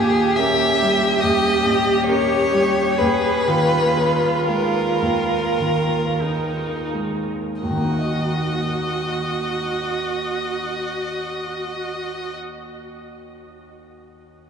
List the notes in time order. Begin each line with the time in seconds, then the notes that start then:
Already playing: D#2 A#2 G4 G#4
0.36 C#4 A#4 E5
0.82 G3
1.21 D#2 D#5
1.65 A#2
2.07 C#4 A#4 C#5
2.53 G3
2.99 D#2 G#4 B4
3.48 D#3 F4
3.97 D#4 G#4
4.46 G#3 A#4
5.02 D#2
5.60 D#3
6.21 D#4 G#4
6.93 G#3
7.62 D#2 F#4 D#5
7.71 D#3
7.77 A#3
7.84 D#4
7.92 F#4
7.99 D#5